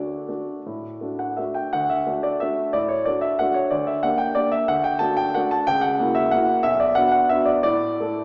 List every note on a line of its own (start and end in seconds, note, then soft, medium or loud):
0.00 0.30 D2 soft
0.00 0.24 A3 soft
0.00 0.24 D4 soft
0.00 0.24 F#4 soft
0.00 1.37 D5 medium
0.28 0.61 A3 soft
0.28 0.61 D4 soft
0.28 0.62 F#4 soft
0.66 1.01 A2 soft
1.01 1.34 A3 soft
1.01 1.35 D4 soft
1.01 1.35 F#4 soft
1.19 1.38 F#5 medium
1.37 1.71 A3 soft
1.37 1.71 D4 soft
1.37 1.71 F#4 soft
1.37 1.56 E5 soft
1.54 1.73 G5 medium
1.73 2.08 D2 medium
1.73 1.91 F#5 medium
1.90 2.25 E5 medium
2.07 2.38 A3 soft
2.07 2.38 D4 soft
2.07 2.38 F#4 soft
2.23 2.41 D5 medium
2.40 2.71 A3 soft
2.40 2.72 D4 soft
2.40 2.72 F#4 soft
2.40 2.74 E5 medium
2.73 3.07 A2 medium
2.73 2.90 D5 medium
2.88 3.07 C#5 medium
3.05 3.37 A3 soft
3.05 3.37 D4 soft
3.05 3.37 F#4 soft
3.05 3.24 D5 medium
3.21 3.40 E5 medium
3.39 3.70 A3 soft
3.39 3.70 D4 soft
3.39 3.70 F#4 soft
3.39 3.57 F#5 medium
3.54 3.72 C#5 medium
3.70 4.02 D2 medium
3.70 3.87 D5 medium
3.87 4.04 E5 medium
4.03 4.33 A#3 soft
4.03 4.34 D4 soft
4.03 4.34 G4 soft
4.03 4.20 F#5 medium
4.18 4.36 G5 medium
4.35 4.66 A#3 soft
4.35 4.66 D4 soft
4.35 4.66 G4 soft
4.35 4.53 D5 medium
4.52 4.69 E5 medium
4.68 5.01 D2 medium
4.68 4.85 F#5 medium
4.84 5.01 G5 medium
4.99 5.31 A3 soft
4.99 5.32 D4 soft
4.99 5.32 F#4 soft
4.99 5.17 A5 medium
5.17 5.34 G5 medium
5.34 5.64 A3 soft
5.34 5.64 D4 soft
5.34 5.64 F#4 soft
5.34 5.51 F#5 medium
5.51 5.67 A5 medium
5.67 5.98 C#2 medium
5.67 5.83 G5 loud
5.81 6.14 F#5 medium
6.00 6.29 A#3 soft
6.00 6.29 E4 soft
6.00 6.30 F#4 soft
6.15 6.31 E5 medium
6.31 6.61 A#3 soft
6.31 6.61 E4 soft
6.31 6.61 F#4 soft
6.31 6.64 F#5 medium
6.63 6.95 B1 medium
6.63 6.79 E5 medium
6.80 6.96 D5 medium
6.95 7.27 B3 soft
6.95 7.27 D4 soft
6.95 7.28 F#4 soft
6.95 7.10 F#5 medium
7.12 7.30 F#5 medium
7.29 7.62 B3 soft
7.29 7.63 D4 soft
7.29 7.63 F#4 soft
7.29 7.48 E5 medium
7.46 7.62 D5 medium
7.63 8.00 A2 medium
7.63 8.24 D5 medium
8.00 8.24 A3 soft
8.00 8.24 E4 soft
8.00 8.24 A4 soft